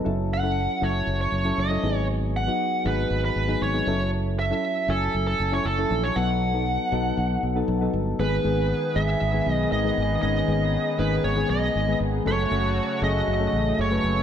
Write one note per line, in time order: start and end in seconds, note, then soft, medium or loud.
0.04 0.66 F#1 medium
0.04 0.39 F#3 medium
0.04 0.40 C#4 medium
0.04 0.40 E4 medium
0.04 0.40 A4 medium
0.34 0.85 F#5 loud
0.42 0.77 F#3 medium
0.42 0.78 C#4 medium
0.42 0.78 E4 medium
0.42 0.78 A4 medium
0.81 1.00 F#1 medium
0.81 1.39 F#3 medium
0.81 1.39 C#4 medium
0.81 1.39 E4 medium
0.81 1.39 A4 medium
0.81 1.19 C#5 medium
1.07 1.25 F#1 medium
1.21 1.60 C#5 medium
1.32 1.50 F#1 medium
1.45 1.68 F#3 medium
1.45 1.68 C#4 medium
1.45 1.68 E4 medium
1.45 1.69 A4 medium
1.58 1.76 F#1 medium
1.58 2.06 D#5 medium
1.70 1.81 F#3 medium
1.70 1.83 C#4 medium
1.70 1.83 E4 medium
1.70 1.84 A4 medium
1.82 2.47 G#1 medium
1.82 2.40 F#3 medium
1.82 2.40 B3 medium
1.82 2.40 D#4 medium
1.82 2.41 G#4 medium
2.36 2.88 F#5 loud
2.47 2.81 F#3 medium
2.47 2.82 B3 medium
2.47 2.82 D#4 medium
2.47 2.82 F#4 medium
2.84 3.04 G#1 medium
2.84 3.42 F#3 medium
2.84 3.42 B3 medium
2.84 3.42 D#4 medium
2.84 3.43 G#4 medium
2.84 3.22 B4 medium
3.10 3.29 G#1 medium
3.25 3.63 B4 medium
3.36 3.54 G#1 medium
3.48 3.71 F#3 medium
3.48 3.71 B3 medium
3.48 3.72 D#4 medium
3.48 3.72 G#4 medium
3.61 3.80 G#1 medium
3.61 4.10 C#5 medium
3.73 3.85 F#3 medium
3.73 3.87 B3 medium
3.73 3.87 D#4 medium
3.73 3.87 G#4 medium
3.87 4.51 F#1 medium
3.87 4.44 F#3 medium
3.87 4.44 C#4 medium
3.87 4.44 E4 medium
3.87 4.45 A4 medium
4.39 4.91 E5 medium
4.50 4.85 F#3 medium
4.50 4.85 C#4 medium
4.50 4.85 E4 medium
4.50 4.85 A4 medium
4.88 5.07 F#1 loud
4.88 5.46 F#3 medium
4.88 5.46 C#4 medium
4.88 5.46 E4 medium
4.88 5.26 A4 medium
4.88 5.46 G#5 medium
5.14 5.33 F#1 loud
5.27 5.53 A4 medium
5.40 5.58 F#1 medium
5.52 5.75 F#3 medium
5.52 5.75 C#4 medium
5.52 5.75 E4 medium
5.52 5.76 A4 medium
5.52 5.66 C#5 medium
5.65 5.83 F#1 medium
5.65 6.05 A4 medium
5.78 6.12 F#3 medium
5.78 6.12 C#4 medium
5.78 6.13 E4 medium
5.78 6.13 A4 medium
5.90 6.09 A#1 medium
6.04 6.16 C#5 medium
6.16 6.76 B1 medium
6.16 6.50 F#3 medium
6.16 6.50 B3 medium
6.16 6.50 D#4 medium
6.16 6.51 A4 medium
6.16 7.90 F#5 loud
6.54 6.88 F#3 medium
6.54 6.88 B3 medium
6.54 6.89 D#4 medium
6.54 6.89 A4 medium
6.92 7.10 B1 medium
6.92 7.49 F#3 medium
6.92 7.49 B3 medium
6.92 7.50 D#4 medium
6.92 7.50 A4 medium
7.17 7.36 B1 medium
7.43 7.61 B1 medium
7.55 7.78 F#3 medium
7.55 7.79 B3 medium
7.55 7.79 D#4 medium
7.55 7.79 A4 medium
7.68 7.86 B1 medium
7.81 8.15 F#3 medium
7.81 8.15 B3 medium
7.81 8.16 D#4 medium
7.81 8.16 A4 medium
7.93 8.12 G1 medium
8.19 8.37 G#1 medium
8.19 8.42 D#3 medium
8.19 12.22 D#3 medium
8.19 8.42 G#3 medium
8.19 12.22 B3 medium
8.19 8.42 B3 medium
8.19 12.22 G#4 medium
8.19 8.43 G#4 medium
8.19 8.98 B4 medium
8.44 8.72 G#1 medium
8.44 8.90 D#3 medium
8.44 8.90 G#3 medium
8.44 8.91 B3 medium
8.44 8.91 G#4 medium
8.95 9.14 G#1 medium
8.95 9.30 D#3 medium
8.95 9.30 G#3 medium
8.95 9.30 B3 medium
8.95 9.30 G#4 medium
8.95 9.50 E5 loud
9.21 9.39 G#1 medium
9.33 9.79 D#3 medium
9.33 9.79 G#3 medium
9.33 9.80 B3 medium
9.33 9.80 G#4 medium
9.46 9.65 B1 medium
9.46 9.72 D#5 loud
9.72 9.90 G#1 medium
9.72 10.21 D#5 loud
9.84 10.19 D#3 medium
9.84 10.19 G#3 medium
9.84 10.19 B3 medium
9.84 10.19 G#4 medium
9.97 10.16 G#1 medium
10.22 10.41 G#1 medium
10.22 10.45 D#3 medium
10.22 10.46 G#3 medium
10.22 10.46 B3 medium
10.22 10.46 C#4 medium
10.22 11.01 D#5 medium
10.48 10.75 G#1 loud
10.48 10.94 D#3 medium
10.48 10.94 G#3 medium
10.48 10.94 B3 medium
10.48 10.94 G#4 medium
10.98 11.17 G#1 medium
10.98 11.33 D#3 medium
10.98 11.33 G#3 medium
10.98 11.33 B3 medium
10.98 11.33 D#4 medium
10.98 11.23 B4 medium
11.24 11.42 G#1 medium
11.24 11.50 C#5 medium
11.36 11.82 D#3 medium
11.36 11.83 G#3 medium
11.36 11.83 B3 medium
11.36 11.83 G#4 medium
11.50 11.68 B1 medium
11.50 11.97 D#5 medium
11.75 11.94 G#1 medium
11.88 12.22 D#3 medium
11.88 12.22 G#3 medium
11.88 12.22 B3 medium
11.88 12.23 G#4 medium
12.00 12.19 G#1 medium
12.25 12.44 F#1 medium
12.25 14.23 C#3 medium
12.25 12.48 F#3 medium
12.25 12.49 A3 medium
12.25 14.23 A3 medium
12.25 12.49 C#4 medium
12.25 14.23 F#4 medium
12.25 12.49 A4 medium
12.25 13.03 C#5 medium
12.51 12.79 F#1 medium
12.51 12.97 F#3 medium
12.51 12.97 A3 medium
12.51 12.97 C#4 medium
12.51 12.97 A4 medium
13.02 13.20 F#1 loud
13.02 13.36 F#3 medium
13.02 13.36 A3 medium
13.02 13.37 C#4 medium
13.02 13.37 G#4 medium
13.02 13.81 D#5 loud
13.28 13.46 F#1 loud
13.40 13.86 F#3 medium
13.40 13.86 A3 medium
13.40 13.86 C#4 medium
13.40 13.86 A4 medium
13.53 13.71 A1 medium
13.79 13.97 F#1 loud
13.79 14.23 C#5 loud
13.91 14.23 F#3 medium
13.91 14.23 A3 medium
13.91 14.23 C#4 medium
13.91 14.23 B4 medium
14.04 14.22 F#1 medium